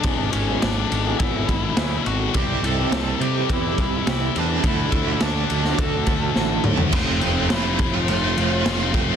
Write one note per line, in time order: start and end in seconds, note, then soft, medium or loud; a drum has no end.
0.00 2.32 E2 medium
0.00 0.29 D4 medium
0.00 0.32 D5 medium
0.00 ride medium
0.04 0.26 G#1 medium
0.04 2.33 B2 medium
0.04 2.34 E3 loud
0.04 0.24 F#3 medium
0.04 0.24 B3 medium
0.04 0.24 E4 medium
0.04 0.24 G#4 medium
0.04 kick loud
0.32 0.55 G#1 medium
0.32 0.59 C#4 medium
0.32 0.61 C#5 medium
0.32 ride medium
0.48 0.67 F#3 medium
0.48 0.67 B3 medium
0.48 0.67 E4 medium
0.48 0.67 G#4 medium
0.62 0.84 G#1 medium
0.62 1.16 D4 medium
0.62 1.21 D5 medium
0.62 snare loud
0.62 ride medium
0.92 1.13 G#1 medium
0.92 ride medium
1.07 1.18 F#3 medium
1.07 1.19 B3 medium
1.07 1.19 E4 medium
1.07 1.19 G#4 medium
1.19 1.41 G#1 medium
1.19 1.34 F#3 medium
1.19 1.34 B3 medium
1.19 2.01 E4 medium
1.19 1.34 E4 medium
1.19 1.33 G#4 medium
1.19 2.06 E5 medium
1.19 kick loud
1.19 ride medium
1.34 1.53 F#3 medium
1.34 1.53 B3 medium
1.34 1.53 E4 medium
1.34 1.53 G#4 medium
1.48 1.70 G#1 medium
1.48 kick medium
1.48 ride medium
1.76 1.98 D2 medium
1.76 1.96 F#3 medium
1.76 1.96 B3 medium
1.76 1.97 E4 medium
1.76 1.97 G#4 medium
1.76 snare loud
1.76 ride medium
2.06 2.28 G#1 medium
2.06 2.33 F#4 medium
2.06 2.35 F#5 medium
2.06 muted clean electric guitar stroke soft
2.06 ride medium
2.34 2.56 C2 medium
2.34 4.33 C3 medium
2.34 2.54 E3 medium
2.34 4.34 G3 medium
2.34 2.54 G3 medium
2.34 4.34 C4 medium
2.34 2.54 C4 medium
2.34 4.34 E4 medium
2.34 2.62 G4 medium
2.34 2.54 G4 medium
2.34 2.65 G5 loud
2.34 kick loud
2.34 ride medium
2.63 2.84 C2 medium
2.63 3.18 A4 medium
2.63 3.23 A5 loud
2.63 ride medium
2.79 2.98 E3 medium
2.79 2.98 G3 medium
2.79 2.97 C4 medium
2.79 2.97 G4 medium
2.92 3.13 C2 medium
2.92 snare loud
2.92 ride medium
3.20 3.42 C3 medium
3.20 3.48 G4 medium
3.20 3.50 G5 medium
3.20 ride medium
3.36 3.49 E3 medium
3.36 3.50 G3 medium
3.36 3.50 C4 medium
3.36 3.50 G4 medium
3.49 3.71 E2 medium
3.49 3.64 E3 medium
3.49 3.64 G3 medium
3.49 3.65 C4 medium
3.49 4.04 E4 medium
3.49 3.64 G4 medium
3.49 4.08 E5 medium
3.49 kick loud
3.49 ride medium
3.65 3.84 E3 medium
3.65 3.84 G3 medium
3.65 3.83 C4 medium
3.65 3.83 G4 medium
3.78 3.99 C2 medium
3.78 kick medium
3.78 ride medium
4.07 4.28 C2 medium
4.07 4.26 E3 medium
4.07 4.26 G3 medium
4.07 4.26 C4 medium
4.07 4.35 E4 medium
4.07 4.27 G4 medium
4.07 4.38 E5 medium
4.07 snare loud
4.07 ride medium
4.35 4.57 E2 medium
4.35 4.62 C3 medium
4.35 4.63 G3 medium
4.35 4.63 C4 medium
4.35 4.64 D4 medium
4.35 4.62 E4 medium
4.35 4.64 D5 medium
4.35 muted clean electric guitar stroke soft
4.35 ride medium
4.62 4.86 D2 medium
4.62 6.62 D3 medium
4.62 4.83 D3 medium
4.62 6.63 F#3 medium
4.62 6.63 A3 medium
4.62 4.83 A3 medium
4.62 6.63 D4 medium
4.62 4.84 D4 medium
4.62 4.84 F#4 medium
4.62 kick loud
4.62 ride medium
4.67 5.19 E4 medium
4.67 5.24 E5 medium
4.92 5.14 D2 medium
4.92 kick medium
4.92 ride medium
5.07 5.26 D3 medium
5.07 5.26 A3 medium
5.07 5.26 D4 medium
5.07 5.26 F#4 loud
5.21 5.43 D2 medium
5.21 5.75 D4 medium
5.21 5.81 D5 medium
5.21 snare loud
5.21 ride medium
5.50 5.72 D2 medium
5.50 ride medium
5.64 5.79 D3 medium
5.64 5.79 A3 medium
5.64 5.79 D4 medium
5.64 5.79 F#4 medium
5.64 snare soft
5.78 6.00 D2 medium
5.78 5.94 D3 medium
5.78 5.94 A3 medium
5.78 5.94 D4 medium
5.78 5.93 F#4 medium
5.78 6.61 A4 medium
5.78 6.61 A5 medium
5.78 kick loud
5.78 ride medium
5.94 6.13 D3 medium
5.94 6.13 A3 medium
5.94 6.13 D4 medium
5.94 6.12 F#4 medium
6.07 6.28 D2 medium
6.07 kick medium
6.07 ride medium
6.35 6.57 A1 medium
6.35 6.55 D3 medium
6.35 6.56 A3 medium
6.35 6.56 D4 medium
6.35 6.56 F#4 medium
6.35 snare medium
6.64 6.86 D2 medium
6.64 6.92 D3 medium
6.64 6.92 F#3 medium
6.64 6.92 A3 medium
6.64 6.91 D4 medium
6.64 muted clean electric guitar stroke soft
6.64 mid tom medium
6.77 floor tom medium
6.92 7.20 F1 medium
6.92 7.21 F3 medium
6.92 7.22 A3 medium
6.92 7.23 C4 medium
6.92 7.48 C4 medium
6.92 7.23 F4 medium
6.92 7.53 C5 medium
6.92 kick loud
6.92 crash loud
6.92 crash medium
7.21 7.49 F1 medium
7.21 7.49 F3 medium
7.21 7.50 A3 medium
7.21 7.51 C4 medium
7.21 7.51 F4 medium
7.21 crash medium
7.36 7.51 A3 medium
7.36 7.51 C4 medium
7.36 7.53 F4 medium
7.50 8.05 F1 medium
7.50 7.78 F3 medium
7.50 7.67 A3 medium
7.50 7.65 C4 medium
7.50 7.64 F4 medium
7.50 7.96 E5 medium
7.50 snare loud
7.50 crash medium
7.54 7.92 E4 medium
7.65 7.79 A3 medium
7.65 7.79 C4 medium
7.65 7.79 F4 medium
7.79 8.22 F3 medium
7.79 7.96 A3 medium
7.79 7.95 C4 medium
7.79 7.94 F4 medium
7.79 muted overdriven electric guitar stroke soft
7.79 kick medium
7.79 crash medium
7.93 8.23 A3 medium
7.93 8.22 C4 medium
7.93 8.20 F4 medium
7.93 8.09 F4 medium
7.93 8.08 F5 medium
7.93 muted distorted electric guitar stroke medium
8.08 8.35 F1 medium
8.08 8.91 F4 medium
8.08 8.91 F5 medium
8.08 crash medium
8.22 8.37 A3 medium
8.22 8.37 C4 medium
8.22 8.37 F4 medium
8.36 8.64 F1 medium
8.36 8.63 F3 medium
8.36 8.51 A3 medium
8.36 8.50 C4 medium
8.36 8.49 F4 medium
8.36 crash medium
8.50 8.65 A3 medium
8.50 8.65 C4 medium
8.50 8.66 F4 medium
8.50 muted distorted electric guitar stroke soft
8.64 8.92 F1 medium
8.64 8.91 F3 medium
8.64 8.80 A3 medium
8.64 8.79 C4 loud
8.64 8.77 F4 loud
8.64 snare loud
8.64 crash medium
8.78 8.93 A3 medium
8.78 8.93 C4 medium
8.78 8.94 F4 medium
8.92 9.16 F1 medium
8.92 9.16 F3 medium
8.92 9.16 A3 medium
8.92 9.16 C4 medium
8.92 9.16 F4 medium
8.92 kick medium
8.92 crash medium
9.09 9.16 A3 medium
9.09 9.16 C4 medium
9.09 9.16 F4 medium